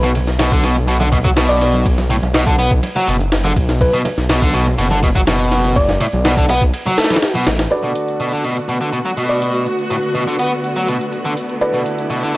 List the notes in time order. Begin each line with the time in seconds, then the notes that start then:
Already playing: B1
0.03 B2, closed hi-hat, ride, high conga
0.15 closed hi-hat, ride, muted conga, low conga
0.27 snare, closed hi-hat
0.39 B2, snare, closed hi-hat, ride, muted conga
0.52 D3, kick, closed hi-hat
0.64 B2, closed hi-hat, ride
0.76 closed hi-hat, muted conga
0.88 B2, closed hi-hat, ride
1.00 D3, closed hi-hat, muted conga, high conga
1.12 B2, kick, closed hi-hat, ride, low conga
1.24 F#3, kick, closed hi-hat, low conga
1.37 B2, snare, closed hi-hat, ride, muted conga
1.49 D5, closed hi-hat
1.61 snare, closed hi-hat, ride, muted conga
1.74 closed hi-hat, high conga
1.86 kick, closed hi-hat, ride
1.98 snare, closed hi-hat, muted conga, high conga
2.10 A2, closed hi-hat, ride, low conga
2.23 B1, closed hi-hat, muted conga, high conga
2.34 B2, snare, closed hi-hat, ride
2.47 D3, kick, closed hi-hat
2.59 B3, closed hi-hat, ride, muted conga
2.71 kick, closed hi-hat
2.83 closed hi-hat, ride, muted conga
2.96 F#3, closed hi-hat, low conga
3.07 F#1 B2, closed hi-hat, open hi-hat
3.20 closed hi-hat, muted conga, high conga
3.32 snare, closed hi-hat, ride
3.44 D3, closed hi-hat, muted conga, high conga
3.56 B1, kick, closed hi-hat, ride
3.69 snare, closed hi-hat
3.81 B4, kick, closed hi-hat, ride, muted conga
3.93 B2, closed hi-hat, ride, high conga
4.05 closed hi-hat, ride, muted conga, low conga
4.18 B1, snare, closed hi-hat
4.29 B2, snare, closed hi-hat, ride
4.42 D3, kick, closed hi-hat, muted conga
4.54 B2, closed hi-hat, ride
4.67 closed hi-hat, muted conga
4.78 F#1 B2, closed hi-hat, ride
4.90 D3, closed hi-hat, high conga
5.03 B2, kick, closed hi-hat, ride, muted conga, low conga
5.15 F#3, kick, closed hi-hat, low conga
5.27 B2, snare, closed hi-hat, ride, muted conga
5.40 closed hi-hat
5.52 snare, closed hi-hat, ride
5.64 closed hi-hat, muted conga, high conga
5.76 D5, kick, closed hi-hat, ride
5.88 snare, closed hi-hat, muted conga, high conga
6.00 A2, closed hi-hat, ride, low conga
6.13 B1, closed hi-hat, high conga
6.25 B2, snare, closed hi-hat, ride, muted conga
6.37 D3, kick, closed hi-hat
6.49 B3, closed hi-hat, ride, muted conga
6.62 kick, closed hi-hat
6.74 closed hi-hat, ride
6.86 F#3, closed hi-hat, muted conga, low conga
6.98 A3 A4, snare, closed hi-hat, ride
7.04 snare, ride
7.10 E3, snare, closed hi-hat, ride, muted conga, high conga
7.16 snare, ride
7.22 snare, closed hi-hat, ride
7.35 B2, closed hi-hat, high conga
7.47 A1, snare, closed hi-hat, ride, muted conga
7.59 snare, closed hi-hat, ride
7.71 D3 A3 B3 D4 F#4 A4 B4 D5, closed hi-hat
7.83 B2, closed hi-hat
7.95 closed hi-hat
8.08 closed hi-hat
8.20 B2, closed hi-hat
8.32 D3, closed hi-hat
8.44 B2, closed hi-hat
8.57 closed hi-hat
8.69 B2, closed hi-hat
8.81 D3, closed hi-hat
8.93 B2, closed hi-hat
9.05 F#3, closed hi-hat
9.17 B2, closed hi-hat
9.29 D5, closed hi-hat
9.42 closed hi-hat
9.54 closed hi-hat
9.66 closed hi-hat
9.79 closed hi-hat
9.90 A2, closed hi-hat
10.03 closed hi-hat
10.15 B2, closed hi-hat
10.27 D3, closed hi-hat
10.39 B3, closed hi-hat
10.52 closed hi-hat
10.64 closed hi-hat
10.76 F#3, closed hi-hat
10.88 B2, closed hi-hat
11.01 closed hi-hat
11.13 closed hi-hat
11.25 D3, closed hi-hat
11.37 closed hi-hat
11.49 closed hi-hat
11.61 D4 E4 F#4 A4 B4 D5, closed hi-hat
11.74 B2, closed hi-hat
11.86 closed hi-hat
11.98 closed hi-hat
12.10 B2, closed hi-hat
12.23 D3, closed hi-hat